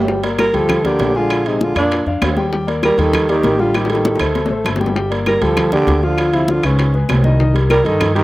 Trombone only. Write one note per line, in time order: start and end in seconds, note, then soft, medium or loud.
0.40 0.56 G3 medium
0.55 0.86 F3 medium
0.84 1.16 D3 medium
1.16 1.48 D3 medium
1.46 1.64 C3 medium
1.62 1.77 D3 medium
1.78 2.05 A#2 medium
2.84 3.00 G3 loud
2.99 3.29 D#3 loud
3.29 3.62 D#3 loud
3.61 3.76 D3 medium
3.75 3.91 D#3 medium
3.91 4.36 D#3 medium
5.27 5.44 G3 medium
5.42 5.72 F3 medium
5.73 6.04 D3 loud
6.04 6.35 D3 medium
6.34 6.51 C3 medium
6.49 6.67 D3 medium
6.65 6.95 G#2 medium
7.70 7.87 G3 loud
7.86 8.15 D#3 medium
8.15 8.24 D#3 loud